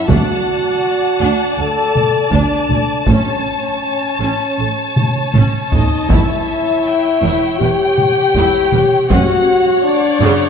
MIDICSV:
0, 0, Header, 1, 8, 480
1, 0, Start_track
1, 0, Tempo, 749064
1, 62, Time_signature, 4, 2, 24, 8
1, 6724, End_track
2, 0, Start_track
2, 0, Title_t, "Violin section"
2, 0, Program_c, 0, 48
2, 63, Note_on_c, 0, 81, 71
2, 4395, Note_off_c, 0, 81, 0
2, 4397, Note_on_c, 0, 79, 65
2, 5832, Note_on_c, 0, 78, 73
2, 5835, Note_off_c, 0, 79, 0
2, 6724, Note_off_c, 0, 78, 0
2, 6724, End_track
3, 0, Start_track
3, 0, Title_t, "Violin section"
3, 0, Program_c, 1, 48
3, 0, Note_on_c, 1, 76, 80
3, 62, Note_on_c, 1, 78, 79
3, 66, Note_off_c, 1, 76, 0
3, 998, Note_off_c, 1, 78, 0
3, 1005, Note_on_c, 1, 81, 78
3, 1486, Note_on_c, 1, 74, 66
3, 1488, Note_off_c, 1, 81, 0
3, 1974, Note_off_c, 1, 74, 0
3, 1982, Note_on_c, 1, 73, 56
3, 3406, Note_off_c, 1, 73, 0
3, 3671, Note_on_c, 1, 75, 62
3, 3896, Note_off_c, 1, 75, 0
3, 3917, Note_on_c, 1, 76, 77
3, 4877, Note_off_c, 1, 76, 0
3, 4878, Note_on_c, 1, 79, 87
3, 5835, Note_off_c, 1, 79, 0
3, 5843, Note_on_c, 1, 78, 82
3, 6304, Note_off_c, 1, 78, 0
3, 6305, Note_on_c, 1, 74, 98
3, 6724, Note_off_c, 1, 74, 0
3, 6724, End_track
4, 0, Start_track
4, 0, Title_t, "French horn section"
4, 0, Program_c, 2, 60
4, 52, Note_on_c, 2, 66, 98
4, 905, Note_off_c, 2, 66, 0
4, 1014, Note_on_c, 2, 69, 96
4, 1480, Note_on_c, 2, 62, 80
4, 1484, Note_off_c, 2, 69, 0
4, 1972, Note_off_c, 2, 62, 0
4, 1973, Note_on_c, 2, 61, 83
4, 3402, Note_off_c, 2, 61, 0
4, 3667, Note_on_c, 2, 63, 77
4, 3894, Note_off_c, 2, 63, 0
4, 3908, Note_on_c, 2, 64, 103
4, 4857, Note_on_c, 2, 67, 106
4, 4872, Note_off_c, 2, 64, 0
4, 5821, Note_on_c, 2, 66, 119
4, 5824, Note_off_c, 2, 67, 0
4, 6302, Note_off_c, 2, 66, 0
4, 6304, Note_on_c, 2, 62, 102
4, 6724, Note_off_c, 2, 62, 0
4, 6724, End_track
5, 0, Start_track
5, 0, Title_t, "Viola section"
5, 0, Program_c, 3, 48
5, 57, Note_on_c, 3, 74, 76
5, 60, Note_on_c, 3, 62, 74
5, 283, Note_off_c, 3, 62, 0
5, 771, Note_on_c, 3, 62, 77
5, 996, Note_off_c, 3, 62, 0
5, 1014, Note_on_c, 3, 69, 44
5, 1065, Note_off_c, 3, 69, 0
5, 1490, Note_on_c, 3, 62, 68
5, 1717, Note_off_c, 3, 62, 0
5, 1738, Note_on_c, 3, 69, 47
5, 1789, Note_off_c, 3, 69, 0
5, 1950, Note_off_c, 3, 74, 0
5, 1974, Note_on_c, 3, 73, 56
5, 1976, Note_on_c, 3, 61, 56
5, 2202, Note_off_c, 3, 61, 0
5, 2697, Note_on_c, 3, 61, 59
5, 2925, Note_off_c, 3, 61, 0
5, 2944, Note_on_c, 3, 69, 36
5, 2995, Note_off_c, 3, 69, 0
5, 3429, Note_on_c, 3, 61, 68
5, 3655, Note_off_c, 3, 61, 0
5, 3668, Note_on_c, 3, 69, 53
5, 3719, Note_off_c, 3, 69, 0
5, 3918, Note_on_c, 3, 64, 73
5, 4140, Note_off_c, 3, 64, 0
5, 4641, Note_on_c, 3, 64, 70
5, 4862, Note_off_c, 3, 64, 0
5, 4886, Note_on_c, 3, 71, 53
5, 4937, Note_off_c, 3, 71, 0
5, 5361, Note_on_c, 3, 64, 78
5, 5581, Note_off_c, 3, 64, 0
5, 5599, Note_on_c, 3, 71, 56
5, 5650, Note_off_c, 3, 71, 0
5, 5806, Note_off_c, 3, 73, 0
5, 5835, Note_on_c, 3, 61, 85
5, 5838, Note_on_c, 3, 73, 83
5, 6055, Note_off_c, 3, 61, 0
5, 6550, Note_on_c, 3, 49, 102
5, 6724, Note_off_c, 3, 49, 0
5, 6724, Note_off_c, 3, 73, 0
5, 6724, End_track
6, 0, Start_track
6, 0, Title_t, "Cello section"
6, 0, Program_c, 4, 48
6, 63, Note_on_c, 4, 38, 71
6, 114, Note_off_c, 4, 38, 0
6, 775, Note_on_c, 4, 38, 74
6, 826, Note_off_c, 4, 38, 0
6, 1019, Note_on_c, 4, 38, 50
6, 1070, Note_off_c, 4, 38, 0
6, 1487, Note_on_c, 4, 38, 74
6, 1539, Note_off_c, 4, 38, 0
6, 1730, Note_on_c, 4, 38, 48
6, 1781, Note_off_c, 4, 38, 0
6, 1966, Note_on_c, 4, 45, 61
6, 2018, Note_off_c, 4, 45, 0
6, 2693, Note_on_c, 4, 45, 61
6, 2744, Note_off_c, 4, 45, 0
6, 2939, Note_on_c, 4, 45, 44
6, 2990, Note_off_c, 4, 45, 0
6, 3418, Note_on_c, 4, 45, 67
6, 3469, Note_off_c, 4, 45, 0
6, 3662, Note_on_c, 4, 45, 46
6, 3713, Note_off_c, 4, 45, 0
6, 3900, Note_on_c, 4, 40, 67
6, 3951, Note_off_c, 4, 40, 0
6, 4627, Note_on_c, 4, 40, 69
6, 4678, Note_off_c, 4, 40, 0
6, 4872, Note_on_c, 4, 40, 53
6, 4924, Note_off_c, 4, 40, 0
6, 5355, Note_on_c, 4, 40, 80
6, 5407, Note_off_c, 4, 40, 0
6, 5597, Note_on_c, 4, 40, 54
6, 5648, Note_off_c, 4, 40, 0
6, 5832, Note_on_c, 4, 42, 77
6, 5883, Note_off_c, 4, 42, 0
6, 6538, Note_on_c, 4, 42, 95
6, 6589, Note_off_c, 4, 42, 0
6, 6724, End_track
7, 0, Start_track
7, 0, Title_t, "Double bass section"
7, 0, Program_c, 5, 48
7, 61, Note_on_c, 5, 38, 91
7, 112, Note_off_c, 5, 38, 0
7, 777, Note_on_c, 5, 38, 69
7, 828, Note_off_c, 5, 38, 0
7, 1018, Note_on_c, 5, 38, 54
7, 1069, Note_off_c, 5, 38, 0
7, 1489, Note_on_c, 5, 38, 70
7, 1540, Note_off_c, 5, 38, 0
7, 1731, Note_on_c, 5, 38, 52
7, 1782, Note_off_c, 5, 38, 0
7, 1969, Note_on_c, 5, 33, 71
7, 2020, Note_off_c, 5, 33, 0
7, 2696, Note_on_c, 5, 33, 54
7, 2747, Note_off_c, 5, 33, 0
7, 2945, Note_on_c, 5, 33, 43
7, 2996, Note_off_c, 5, 33, 0
7, 3432, Note_on_c, 5, 33, 64
7, 3483, Note_off_c, 5, 33, 0
7, 3681, Note_on_c, 5, 33, 50
7, 3732, Note_off_c, 5, 33, 0
7, 3922, Note_on_c, 5, 28, 73
7, 3973, Note_off_c, 5, 28, 0
7, 4646, Note_on_c, 5, 28, 73
7, 4697, Note_off_c, 5, 28, 0
7, 4883, Note_on_c, 5, 28, 50
7, 4935, Note_off_c, 5, 28, 0
7, 5366, Note_on_c, 5, 28, 78
7, 5417, Note_off_c, 5, 28, 0
7, 5601, Note_on_c, 5, 28, 64
7, 5652, Note_off_c, 5, 28, 0
7, 5845, Note_on_c, 5, 30, 88
7, 5897, Note_off_c, 5, 30, 0
7, 6544, Note_on_c, 5, 30, 91
7, 6596, Note_off_c, 5, 30, 0
7, 6724, End_track
8, 0, Start_track
8, 0, Title_t, "Taiko and cinematic ensemble drums"
8, 57, Note_on_c, 9, 41, 97
8, 121, Note_off_c, 9, 41, 0
8, 1252, Note_on_c, 9, 47, 50
8, 1316, Note_off_c, 9, 47, 0
8, 1484, Note_on_c, 9, 41, 72
8, 1548, Note_off_c, 9, 41, 0
8, 1730, Note_on_c, 9, 47, 47
8, 1794, Note_off_c, 9, 47, 0
8, 1964, Note_on_c, 9, 41, 89
8, 2028, Note_off_c, 9, 41, 0
8, 3180, Note_on_c, 9, 47, 77
8, 3244, Note_off_c, 9, 47, 0
8, 3420, Note_on_c, 9, 47, 69
8, 3484, Note_off_c, 9, 47, 0
8, 3666, Note_on_c, 9, 43, 86
8, 3730, Note_off_c, 9, 43, 0
8, 3909, Note_on_c, 9, 41, 95
8, 3973, Note_off_c, 9, 41, 0
8, 5117, Note_on_c, 9, 47, 52
8, 5181, Note_off_c, 9, 47, 0
8, 5348, Note_on_c, 9, 41, 72
8, 5413, Note_off_c, 9, 41, 0
8, 5587, Note_on_c, 9, 47, 52
8, 5651, Note_off_c, 9, 47, 0
8, 5833, Note_on_c, 9, 41, 96
8, 5897, Note_off_c, 9, 41, 0
8, 6724, End_track
0, 0, End_of_file